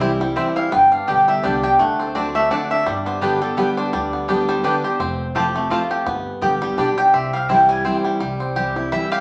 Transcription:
Already playing: C2 C3 G3 C4
0.00 E3 G3 C4 E4 C5 G5
0.20 G3 C4 E4
0.36 E3 G3 C4 E4 C5 E5 G5
0.56 E4 F5
0.72 G1 G2 B3 G5
0.92 D4 F5
1.07 B1 D3 G3 B3 G4 D5 G5
1.28 G3 E5
1.43 C2 D3 G3 B3 D4 G4 D5 G5
1.63 B3 G4 G5
1.79 D2 D3 A3 F#5
1.99 C4 A4
2.15 D3 A3 C4 D4 F#4 C5 D5 A5
2.35 A3 E5
2.50 D3 A3 C4 D4 F#4 D5 F#5 A5
2.71 D4 E5
2.86 G1 G2 G3 D5
3.06 B3 C5
3.21 D3 G3 B3 D4 G4 B4 D5 G5
3.41 G3 B3 G4 A4
3.57 D3 G3 B3 G4 B4 D5 G5
3.77 D4 C5
3.93 D2 D3 G3 D5
4.13 B3
4.28 D3 G3 B3 D4 G4 D5 G5
4.48 G3 C5
4.63 D3 G3 B3 D4 G4 B4 D5 G5
4.84 B3 G4 C5
5.00 F1 F2 C4
5.35 F3 A3 C4 F4 G4 C5 A5
5.55 A3 C4 F4
5.70 F3 A3 C4 F4 C5 A5
5.91 G4
6.06 G1 G2 B3
6.41 A1 D3 G3 B3 G4 D5 G5
6.61 G3 B3 G4
6.77 B1 D3 G3 B3 D4 G4 D5 G5
6.97 G4 G5
7.13 C2 C3 C4 E5
7.33 G3 F5
7.49 E3 G3 C4 E4 C5 G5
7.69 G3 G#5
7.84 E3 G3 C4 E4 C5 G5
8.04 G3
8.20 C2 C3 G3
8.40 C4
8.56 E3 G3 C4 E4 G4
8.76 C4 E4
8.92 E3 G3 C4 E4 E5
9.12 G4 F5

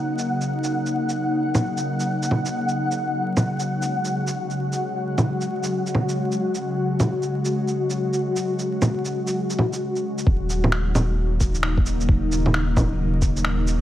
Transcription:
Already playing: C#3 F#3 A#3 D#4 F#5
0.18 shaker
0.41 shaker
0.64 shaker
0.86 shaker
1.09 shaker
1.55 low bongo, shaker
1.77 shaker
2.00 shaker
2.23 shaker
2.31 low bongo
2.45 shaker
2.69 shaker
2.91 shaker
3.00 G#3 F#4
3.37 low bongo, shaker
3.59 shaker
3.82 shaker
4.05 shaker
4.27 shaker
4.50 shaker
4.72 shaker
5.18 low bongo, shaker
5.41 shaker
5.63 shaker
5.86 shaker
5.95 low bongo
6.09 shaker
6.32 shaker
6.55 shaker
7.00 low bongo, shaker
7.22 shaker
7.45 shaker
7.68 shaker
7.90 shaker
8.13 shaker
8.36 shaker
8.59 shaker
8.82 low bongo, shaker
9.05 shaker
9.27 shaker
9.50 shaker
9.59 low bongo
9.73 shaker
9.96 shaker
10.18 shaker
10.26 D#1 C#3 F#3 A#3 D#4, kick
10.50 shaker
10.64 low bongo
10.72 finger snap
10.95 low bongo, shaker
11.40 kick, shaker
11.55 shaker
11.63 finger snap
11.78 kick
11.86 shaker
12.01 shaker
12.09 kick
12.32 shaker
12.46 low bongo
12.54 finger snap
12.77 kick, low bongo, shaker
13.22 kick, shaker
13.36 shaker
13.45 finger snap
13.67 shaker

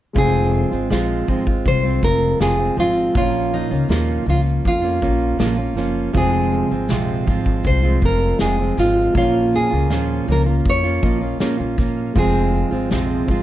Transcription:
0.13 F1 F3 G#3 C4 F4 C5, kick, shaker
0.18 G#4
0.54 shaker
0.71 G#1 G#3 C4 F4, shaker
0.90 A#1 F3 G#3 C4 F4, snare, shaker
1.27 G#1 F3 G#3 C4 F4, kick, shaker
1.47 G#3 C4 F4, kick
1.65 C2 C5, kick, shaker
1.84 G#3 C4 F4
2.02 F1 F3 G#3 C4 F4 A#4, kick, shaker
2.39 F1 F3 G#3 C4 F4 G#4, snare, shaker
2.59 G#3 C4 F4
2.76 G#1 F3 G#3 C4 F4, shaker
2.97 shaker
3.14 A#1 A#2 F3 A#3 C#4 F4 C#5, kick, shaker
3.54 D#4, shaker
3.70 C#2 A#3 C#4 F4, shaker
3.89 D#2 A#2 F3 A#3 C#4 F4, snare, shaker
4.26 C#2 F3 A#3 C#4 F4, shaker
4.46 shaker
4.65 F2 F4, kick, shaker
4.82 A#3 C#4 F4
5.01 A#1 F3 A#3 C#4 F4, kick, shaker
5.38 A#1 A#2 F3 A#3 C#4 F4, snare, shaker
5.57 A#3 C#4 F4
5.75 F#1 F3 A#3 C#4 F4, snare, shaker
6.12 F1 F2 C3 F3 G#3 C4 F4, kick, shaker
6.17 G#4 C5
6.52 shaker
6.70 G#1 F3 G#3 C4 F4
6.88 A#1 F2 C3 F3 G#3 C4 F4, snare, shaker
7.26 G#1 F3 G#3 C4 F4, kick, shaker
7.45 kick, shaker
7.63 C2 C5, kick, shaker
7.83 F3 G#3 C4 F4
8.01 F1 F3 G#3 C4 F4, kick, shaker
8.05 A#4
8.20 shaker
8.39 F1 F2 C3 F3 G#3 C4 F4 G#4, snare, shaker
8.59 F3 G#3 C4 F4
8.76 G#1 F3 G#3 C4 F4, snare, shaker
8.81 F4
9.14 A#1 A#2 F3 A#3 C#4 F4 C#5, kick, shaker
9.53 G#4, shaker
9.71 C#2 A#3 C#4 F4
9.89 D#2 A#2 F3 A#3 C#4 F4, snare, shaker
10.28 C#2 F3 A#3 C#4 F4, shaker
10.32 A#4
10.46 A#3 C#4 F4, shaker
10.65 F2, kick, shaker
10.69 C#5
10.84 A#3 C#4 F4
11.02 A#1 F3 A#3 C#4 F4 D#5, kick, shaker
11.21 A#3 C#4 F4
11.39 A#2 F3 A#3 C#4 F4, muted upright bass stroke, snare, shaker
11.58 A#1 A#3 C#4 F4
11.77 A#2 F3 A#3 C#4 F4, kick, snare, shaker
12.13 F1 F2 C3 F3 G#3 C4 F4, kick, shaker
12.18 G#4 C5
12.54 shaker
12.71 G#1 F3 G#3 C4 F4
12.90 A#1 F2 C3 F3 G#3 C4 F4, snare, shaker
13.28 G#1 F3 G#3 C4 F4, kick, shaker

